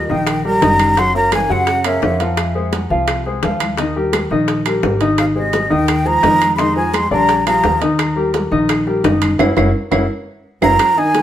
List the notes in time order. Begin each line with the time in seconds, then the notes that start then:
Already playing: A#2 D#5
0.09 A#1 D#3 D#4 D#5 G5, high bongo, high conga
0.27 high bongo, high conga, high timbale, claves
0.44 G3 G4 A#4 A#5, high bongo, high conga
0.62 F#1 D#3 D#4 D#5, high bongo, low bongo, high conga, high timbale, low timbale
0.79 high bongo, high conga, high timbale, claves
0.97 F#3 F#4 F#5 C6, high bongo, high timbale
1.15 F#3 A#3 A#4 C#5 A#5, high conga
1.32 E3 G#5, high bongo, high conga, high timbale, low timbale, claves
1.50 F#2 C#3 F#3 F#4 F#5, high bongo, high conga
1.67 high bongo, high conga, high timbale
1.84 C#3 A#3 A#4 C#5 E5, high conga, high timbale, claves
2.02 F2 A#3 A#4 C#5, high bongo, low bongo, high conga, low timbale
2.20 F3 F4 F5, high bongo, high conga, high timbale
2.37 high bongo, high conga, high timbale, claves
2.55 G#3 G#4 C5, high conga
2.73 high bongo, high conga, high timbale, low timbale
2.90 C2 F3 F4 F5, high bongo, high conga
3.08 high bongo, high conga, high timbale, claves
3.25 G#3 G#4 C5, high bongo, high conga
3.43 D#2 F3 F4 F5, high bongo, low bongo, high conga, high timbale, low timbale
3.60 high bongo, high conga, high timbale, claves
3.78 D#3 D#4 D#5, high bongo, high timbale
3.96 G3 G4 A#4, high conga
4.13 high bongo, high conga, high timbale, low timbale, claves
4.30 A#1 D#3 D#4 D#5, high bongo, high conga
4.48 high bongo, high conga, high timbale
4.66 G3 G4 A#4, high conga, high timbale, claves
4.83 G#1 G3 G4 A#4, high bongo, low bongo, high conga, low timbale
5.01 D#3 D#4 D#5, high bongo, high conga, high timbale
5.18 C3 F5, high bongo, high conga, high timbale, claves
5.35 C3 G#3 G#4 C5 D#5, high conga
5.53 high bongo, high conga, high timbale, low timbale
5.70 D#2 D#3 D#4 D#5 G5, high bongo, high conga
5.88 high bongo, high conga, high timbale, claves
6.05 F3 G#3 G#4 C5 A#5, high bongo, high conga
6.23 F2 D#3 D#4 D#5, high bongo, low bongo, high conga, high timbale, low timbale
6.41 high bongo, high conga, high timbale, claves
6.55 D#3 G3 G#3 B5, high bongo, high conga
6.59 D#4 D#5 C6, high timbale
6.75 F3 G#3 G#4 C5 G#5, high conga
6.93 G#3 C6, high bongo, high conga, high timbale, low timbale, claves
7.11 A#1 D3 G3 D4 D5 A#5, high bongo, high conga
7.29 high bongo, high conga, high timbale
7.46 F3 G3 F4 G#4 A#5, high conga, high timbale, claves
7.63 D#2 F3 F4 G#4, high bongo, low bongo, high conga, low timbale
7.81 D#3 D#4 D#5, high bongo, high conga, high timbale
7.99 high bongo, high conga, high timbale, claves
8.16 G3 G4 A#4, high conga
8.34 high bongo, high conga, high timbale, low timbale
8.51 A#1 D#3 D#4 D#5, high bongo, high conga
8.69 high bongo, high conga, high timbale, claves
8.87 G3 G4 A#4, high bongo, high conga
9.04 F#1 D#3 D#4 D#5, high bongo, low bongo, high conga, high timbale, low timbale
9.22 high bongo, high conga, high timbale, claves
9.39 F#1 C#4 E4 F#4, low bongo, high conga, high timbale, claves
9.57 F#1 C#4 E4 F#4, low bongo, high conga, high timbale, claves
9.91 F#1 C#4 E4 F#4, low bongo, high conga, high timbale, claves
10.62 F#1 F#3 C#4 E4 F#4 A#5, low bongo, high conga, high timbale, claves
10.79 high bongo, high conga, high timbale, claves
10.97 D#3 D#4 D#5 G#5 D#6, high conga
11.14 high bongo, high conga, high timbale